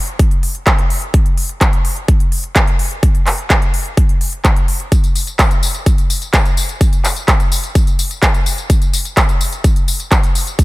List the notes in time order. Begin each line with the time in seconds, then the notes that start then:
0.08 closed hi-hat
0.19 kick, closed hi-hat
0.31 closed hi-hat
0.43 open hi-hat
0.55 closed hi-hat
0.67 kick, clap, closed hi-hat
0.78 closed hi-hat
0.90 open hi-hat
1.02 closed hi-hat
1.14 kick, closed hi-hat
1.26 closed hi-hat
1.38 open hi-hat
1.49 closed hi-hat
1.61 kick, clap, closed hi-hat
1.73 closed hi-hat
1.85 open hi-hat
1.97 closed hi-hat
2.08 kick, closed hi-hat
2.20 closed hi-hat
2.32 open hi-hat
2.44 closed hi-hat
2.56 kick, clap, closed hi-hat
2.67 closed hi-hat
2.79 open hi-hat
2.91 closed hi-hat
3.03 kick, closed hi-hat
3.15 closed hi-hat
3.27 clap, open hi-hat
3.38 closed hi-hat
3.50 kick, clap, closed hi-hat
3.62 closed hi-hat
3.74 open hi-hat
3.86 closed hi-hat
3.97 kick, closed hi-hat
4.09 closed hi-hat
4.21 open hi-hat
4.33 closed hi-hat
4.45 kick, clap, closed hi-hat
4.56 closed hi-hat
4.68 open hi-hat
4.80 closed hi-hat
4.92 kick, closed hi-hat, tambourine
5.04 closed hi-hat, tambourine
5.15 open hi-hat, tambourine
5.27 closed hi-hat, tambourine
5.39 kick, clap, closed hi-hat, tambourine
5.51 closed hi-hat, tambourine
5.63 open hi-hat, tambourine
5.75 closed hi-hat, tambourine
5.86 kick, closed hi-hat, tambourine
5.98 closed hi-hat, tambourine
6.10 open hi-hat, tambourine
6.22 closed hi-hat, tambourine
6.34 kick, clap, closed hi-hat, tambourine
6.45 closed hi-hat, tambourine
6.57 open hi-hat, tambourine
6.69 closed hi-hat, tambourine
6.81 kick, closed hi-hat, tambourine
6.93 closed hi-hat, tambourine
7.04 clap, open hi-hat, tambourine
7.16 closed hi-hat, tambourine
7.28 kick, clap, closed hi-hat, tambourine
7.40 closed hi-hat, tambourine
7.52 open hi-hat, tambourine
7.63 closed hi-hat, tambourine
7.75 kick, closed hi-hat, tambourine
7.87 closed hi-hat, tambourine
7.99 open hi-hat, tambourine
8.11 closed hi-hat, tambourine
8.23 kick, clap, closed hi-hat, tambourine
8.34 closed hi-hat, tambourine
8.46 open hi-hat, tambourine
8.58 closed hi-hat, tambourine
8.70 kick, closed hi-hat, tambourine
8.82 closed hi-hat, tambourine
8.93 open hi-hat, tambourine
9.05 closed hi-hat, tambourine
9.17 kick, clap, closed hi-hat, tambourine
9.29 closed hi-hat, tambourine
9.41 open hi-hat, tambourine
9.53 closed hi-hat, tambourine
9.64 kick, closed hi-hat, tambourine
9.76 closed hi-hat, tambourine
9.88 open hi-hat, tambourine
10.00 closed hi-hat, tambourine
10.12 kick, clap, closed hi-hat, tambourine
10.23 closed hi-hat, tambourine
10.35 open hi-hat, tambourine
10.47 closed hi-hat, tambourine
10.59 kick, closed hi-hat, tambourine